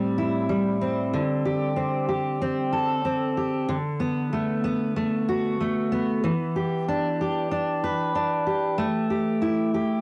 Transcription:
0, 0, Header, 1, 2, 480
1, 0, Start_track
1, 0, Key_signature, 1, "minor"
1, 0, Tempo, 638298
1, 849, Time_signature, 4, 2, 24, 8
1, 7528, End_track
2, 0, Start_track
2, 0, Title_t, "Steel-string acoustic guitar"
2, 0, Program_c, 0, 25
2, 0, Note_on_c, 0, 45, 75
2, 0, Note_on_c, 0, 55, 70
2, 0, Note_on_c, 0, 60, 60
2, 0, Note_on_c, 0, 67, 67
2, 134, Note_on_c, 0, 64, 69
2, 367, Note_off_c, 0, 55, 0
2, 370, Note_on_c, 0, 55, 59
2, 608, Note_off_c, 0, 60, 0
2, 611, Note_on_c, 0, 60, 59
2, 847, Note_off_c, 0, 67, 0
2, 851, Note_off_c, 0, 45, 0
2, 853, Note_on_c, 0, 50, 74
2, 900, Note_off_c, 0, 64, 0
2, 1093, Note_on_c, 0, 67, 60
2, 1322, Note_off_c, 0, 60, 0
2, 1325, Note_on_c, 0, 60, 60
2, 1560, Note_off_c, 0, 67, 0
2, 1569, Note_on_c, 0, 67, 57
2, 1807, Note_off_c, 0, 60, 0
2, 1816, Note_on_c, 0, 60, 66
2, 2049, Note_on_c, 0, 69, 66
2, 2072, Note_off_c, 0, 55, 0
2, 2283, Note_off_c, 0, 60, 0
2, 2292, Note_on_c, 0, 60, 58
2, 2526, Note_off_c, 0, 67, 0
2, 2535, Note_on_c, 0, 67, 57
2, 2768, Note_off_c, 0, 50, 0
2, 2771, Note_on_c, 0, 50, 79
2, 2819, Note_off_c, 0, 60, 0
2, 2821, Note_off_c, 0, 67, 0
2, 3006, Note_on_c, 0, 59, 59
2, 3029, Note_off_c, 0, 69, 0
2, 3254, Note_on_c, 0, 57, 59
2, 3486, Note_off_c, 0, 59, 0
2, 3489, Note_on_c, 0, 59, 60
2, 3723, Note_off_c, 0, 57, 0
2, 3732, Note_on_c, 0, 57, 62
2, 3975, Note_on_c, 0, 66, 69
2, 4206, Note_off_c, 0, 57, 0
2, 4215, Note_on_c, 0, 57, 57
2, 4448, Note_off_c, 0, 59, 0
2, 4451, Note_on_c, 0, 59, 56
2, 4687, Note_off_c, 0, 50, 0
2, 4690, Note_on_c, 0, 52, 73
2, 4741, Note_off_c, 0, 57, 0
2, 4741, Note_off_c, 0, 66, 0
2, 4932, Note_on_c, 0, 67, 55
2, 5174, Note_off_c, 0, 59, 0
2, 5177, Note_on_c, 0, 62, 60
2, 5418, Note_off_c, 0, 67, 0
2, 5421, Note_on_c, 0, 67, 58
2, 5641, Note_off_c, 0, 62, 0
2, 5650, Note_on_c, 0, 62, 59
2, 5893, Note_on_c, 0, 71, 69
2, 6121, Note_off_c, 0, 62, 0
2, 6130, Note_on_c, 0, 62, 58
2, 6363, Note_off_c, 0, 67, 0
2, 6366, Note_on_c, 0, 67, 56
2, 6602, Note_on_c, 0, 57, 73
2, 6658, Note_off_c, 0, 62, 0
2, 6660, Note_off_c, 0, 71, 0
2, 6842, Note_off_c, 0, 67, 0
2, 6845, Note_on_c, 0, 67, 53
2, 7082, Note_on_c, 0, 64, 58
2, 7322, Note_off_c, 0, 52, 0
2, 7323, Note_off_c, 0, 67, 0
2, 7326, Note_on_c, 0, 67, 60
2, 7528, Note_off_c, 0, 57, 0
2, 7528, Note_off_c, 0, 64, 0
2, 7528, Note_off_c, 0, 67, 0
2, 7528, End_track
0, 0, End_of_file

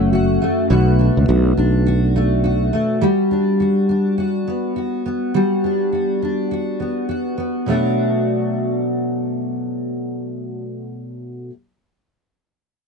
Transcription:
0, 0, Header, 1, 3, 480
1, 0, Start_track
1, 0, Key_signature, 2, "minor"
1, 0, Tempo, 580833
1, 582, Time_signature, 4, 2, 24, 8
1, 10640, End_track
2, 0, Start_track
2, 0, Title_t, "Steel-string acoustic guitar"
2, 0, Program_c, 0, 25
2, 0, Note_on_c, 0, 42, 77
2, 0, Note_on_c, 0, 57, 54
2, 0, Note_on_c, 0, 61, 54
2, 0, Note_on_c, 0, 66, 61
2, 103, Note_off_c, 0, 66, 0
2, 106, Note_on_c, 0, 66, 59
2, 341, Note_off_c, 0, 57, 0
2, 344, Note_on_c, 0, 57, 51
2, 578, Note_on_c, 0, 47, 70
2, 580, Note_off_c, 0, 66, 0
2, 584, Note_on_c, 0, 66, 61
2, 585, Note_off_c, 0, 42, 0
2, 640, Note_off_c, 0, 61, 0
2, 819, Note_on_c, 0, 62, 49
2, 1057, Note_off_c, 0, 66, 0
2, 1061, Note_on_c, 0, 66, 57
2, 1297, Note_off_c, 0, 62, 0
2, 1300, Note_on_c, 0, 62, 53
2, 1537, Note_off_c, 0, 66, 0
2, 1541, Note_on_c, 0, 66, 60
2, 1780, Note_off_c, 0, 57, 0
2, 1784, Note_on_c, 0, 57, 53
2, 2012, Note_off_c, 0, 66, 0
2, 2015, Note_on_c, 0, 66, 58
2, 2246, Note_off_c, 0, 57, 0
2, 2256, Note_on_c, 0, 57, 49
2, 2490, Note_on_c, 0, 55, 70
2, 2494, Note_off_c, 0, 66, 0
2, 2498, Note_on_c, 0, 66, 61
2, 2500, Note_off_c, 0, 47, 0
2, 2556, Note_off_c, 0, 57, 0
2, 2732, Note_off_c, 0, 62, 0
2, 2736, Note_on_c, 0, 62, 47
2, 2971, Note_off_c, 0, 66, 0
2, 2975, Note_on_c, 0, 66, 59
2, 3211, Note_off_c, 0, 62, 0
2, 3214, Note_on_c, 0, 62, 51
2, 3450, Note_off_c, 0, 66, 0
2, 3453, Note_on_c, 0, 66, 56
2, 3698, Note_on_c, 0, 59, 48
2, 3930, Note_off_c, 0, 66, 0
2, 3933, Note_on_c, 0, 66, 53
2, 4175, Note_off_c, 0, 59, 0
2, 4178, Note_on_c, 0, 59, 47
2, 4406, Note_off_c, 0, 55, 0
2, 4416, Note_on_c, 0, 55, 67
2, 4417, Note_off_c, 0, 66, 0
2, 4420, Note_on_c, 0, 66, 59
2, 4657, Note_off_c, 0, 62, 0
2, 4661, Note_on_c, 0, 62, 47
2, 4893, Note_off_c, 0, 66, 0
2, 4896, Note_on_c, 0, 66, 52
2, 5140, Note_off_c, 0, 62, 0
2, 5143, Note_on_c, 0, 62, 47
2, 5378, Note_off_c, 0, 66, 0
2, 5381, Note_on_c, 0, 66, 51
2, 5615, Note_off_c, 0, 59, 0
2, 5618, Note_on_c, 0, 59, 46
2, 5853, Note_off_c, 0, 66, 0
2, 5857, Note_on_c, 0, 66, 52
2, 6092, Note_off_c, 0, 59, 0
2, 6095, Note_on_c, 0, 59, 44
2, 6331, Note_on_c, 0, 47, 63
2, 6340, Note_off_c, 0, 55, 0
2, 6343, Note_on_c, 0, 54, 68
2, 6349, Note_off_c, 0, 59, 0
2, 6353, Note_on_c, 0, 57, 63
2, 6359, Note_off_c, 0, 62, 0
2, 6362, Note_on_c, 0, 62, 67
2, 6370, Note_off_c, 0, 66, 0
2, 6373, Note_on_c, 0, 66, 75
2, 9499, Note_off_c, 0, 47, 0
2, 9505, Note_off_c, 0, 54, 0
2, 9510, Note_off_c, 0, 57, 0
2, 9515, Note_off_c, 0, 62, 0
2, 9520, Note_off_c, 0, 66, 0
2, 10640, End_track
3, 0, Start_track
3, 0, Title_t, "Fretless electric bass"
3, 0, Program_c, 1, 35
3, 0, Note_on_c, 1, 30, 76
3, 310, Note_off_c, 1, 30, 0
3, 581, Note_on_c, 1, 35, 84
3, 896, Note_off_c, 1, 35, 0
3, 969, Note_on_c, 1, 37, 66
3, 1046, Note_off_c, 1, 37, 0
3, 1065, Note_on_c, 1, 35, 86
3, 1260, Note_off_c, 1, 35, 0
3, 1308, Note_on_c, 1, 35, 71
3, 2232, Note_off_c, 1, 35, 0
3, 10640, End_track
0, 0, End_of_file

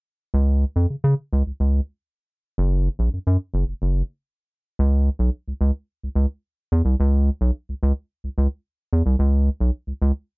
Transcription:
0, 0, Header, 1, 2, 480
1, 0, Start_track
1, 0, Tempo, 555556
1, 303, Time_signature, 4, 2, 24, 8
1, 4142, Tempo, 549954
1, 9013, End_track
2, 0, Start_track
2, 0, Title_t, "Analog synth bass"
2, 0, Program_c, 0, 38
2, 292, Note_on_c, 0, 37, 99
2, 560, Note_off_c, 0, 37, 0
2, 656, Note_on_c, 0, 41, 87
2, 747, Note_off_c, 0, 41, 0
2, 779, Note_on_c, 0, 49, 47
2, 828, Note_off_c, 0, 49, 0
2, 898, Note_on_c, 0, 49, 93
2, 989, Note_off_c, 0, 49, 0
2, 1146, Note_on_c, 0, 37, 91
2, 1234, Note_off_c, 0, 37, 0
2, 1266, Note_on_c, 0, 37, 44
2, 1314, Note_off_c, 0, 37, 0
2, 1383, Note_on_c, 0, 37, 81
2, 1560, Note_off_c, 0, 37, 0
2, 2230, Note_on_c, 0, 30, 112
2, 2492, Note_off_c, 0, 30, 0
2, 2583, Note_on_c, 0, 34, 81
2, 2672, Note_off_c, 0, 34, 0
2, 2707, Note_on_c, 0, 42, 52
2, 2755, Note_off_c, 0, 42, 0
2, 2824, Note_on_c, 0, 42, 90
2, 2912, Note_off_c, 0, 42, 0
2, 3055, Note_on_c, 0, 30, 93
2, 3147, Note_off_c, 0, 30, 0
2, 3178, Note_on_c, 0, 30, 43
2, 3228, Note_off_c, 0, 30, 0
2, 3299, Note_on_c, 0, 30, 85
2, 3476, Note_off_c, 0, 30, 0
2, 4140, Note_on_c, 0, 37, 111
2, 4405, Note_off_c, 0, 37, 0
2, 4490, Note_on_c, 0, 35, 90
2, 4583, Note_off_c, 0, 35, 0
2, 4737, Note_on_c, 0, 37, 55
2, 4787, Note_off_c, 0, 37, 0
2, 4852, Note_on_c, 0, 37, 100
2, 4944, Note_off_c, 0, 37, 0
2, 5225, Note_on_c, 0, 37, 51
2, 5273, Note_off_c, 0, 37, 0
2, 5330, Note_on_c, 0, 37, 97
2, 5423, Note_off_c, 0, 37, 0
2, 5823, Note_on_c, 0, 40, 106
2, 5912, Note_off_c, 0, 40, 0
2, 5936, Note_on_c, 0, 36, 89
2, 6027, Note_off_c, 0, 36, 0
2, 6066, Note_on_c, 0, 37, 114
2, 6328, Note_off_c, 0, 37, 0
2, 6425, Note_on_c, 0, 35, 104
2, 6513, Note_off_c, 0, 35, 0
2, 6671, Note_on_c, 0, 37, 51
2, 6717, Note_off_c, 0, 37, 0
2, 6789, Note_on_c, 0, 37, 108
2, 6875, Note_off_c, 0, 37, 0
2, 7149, Note_on_c, 0, 37, 51
2, 7196, Note_off_c, 0, 37, 0
2, 7269, Note_on_c, 0, 37, 101
2, 7355, Note_off_c, 0, 37, 0
2, 7749, Note_on_c, 0, 40, 98
2, 7835, Note_off_c, 0, 40, 0
2, 7864, Note_on_c, 0, 36, 94
2, 7952, Note_off_c, 0, 36, 0
2, 7981, Note_on_c, 0, 37, 108
2, 8245, Note_off_c, 0, 37, 0
2, 8341, Note_on_c, 0, 35, 92
2, 8430, Note_off_c, 0, 35, 0
2, 8575, Note_on_c, 0, 37, 55
2, 8625, Note_off_c, 0, 37, 0
2, 8700, Note_on_c, 0, 37, 107
2, 8789, Note_off_c, 0, 37, 0
2, 9013, End_track
0, 0, End_of_file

